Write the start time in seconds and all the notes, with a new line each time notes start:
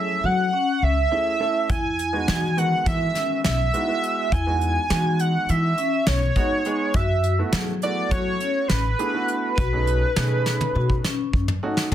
Already playing: F#3 A3 C#4 E4 G#4 E5
0.24 F#3 F#4 F#5
0.53 C#4
0.82 C#2 E5
1.11 A3 C#4 E4 G#4
1.40 A3 C#4 E4 A4
1.70 E2 E4 G#5, kick, closed hi-hat
1.99 closed hi-hat
2.13 G#3 B3 D#4 F#4
2.28 E3 F#4, snare, closed hi-hat
2.57 D#3 G#3 B3 F#4 F#5, closed hi-hat
2.86 E3 E4 E5, kick, closed hi-hat
3.15 C#4, snare, closed hi-hat
3.44 B1 E5, snare, closed hi-hat
3.73 G#3 B3 D#4 E4 F#4, closed hi-hat
3.88 G#3 B3 E4 F#4
4.03 closed hi-hat
4.32 E2 E4 G#5, kick, closed hi-hat
4.46 G#3 B3 D#4 F#4
4.61 closed hi-hat
4.90 E3 G#3 B3 D#4 F#4, snare, closed hi-hat
5.19 F#5, closed hi-hat
5.49 E3 E4 E5, closed hi-hat
5.78 C#4, closed hi-hat
6.07 B1 C#5, snare, closed hi-hat
6.36 G#3 B3 D#4 F#4, kick, closed hi-hat
6.65 G#3 B3 D#4 G#4, closed hi-hat
6.94 F#2 F#4 E5, kick, closed hi-hat
7.24 closed hi-hat
7.39 A3 B3 E4 F#4
7.53 F#3 G#4, snare, closed hi-hat
7.82 A3 B3 E4 F#4 D5, closed hi-hat
8.11 F#3 F#4 C#5, kick, closed hi-hat
8.40 C#4, closed hi-hat
8.68 A1 B4, snare, closed hi-hat
8.99 A3 B3 D4 E4 G#4, closed hi-hat
9.14 A3 B3 E4 F#4
9.28 closed hi-hat
9.55 B1 F#4 B4, kick, closed hi-hat
9.72 A3 C#4 D#4 G#4
9.87 closed hi-hat
10.16 B2 A3 C#4 D#4 G#4, snare, closed hi-hat
10.46 snare
10.61 high tom
10.75 B2 F#4
10.90 kick
11.04 C#4, snare
11.33 F#2, kick
11.48 mid tom
11.63 A3 C#4 D#4 F#4
11.77 snare
11.92 floor tom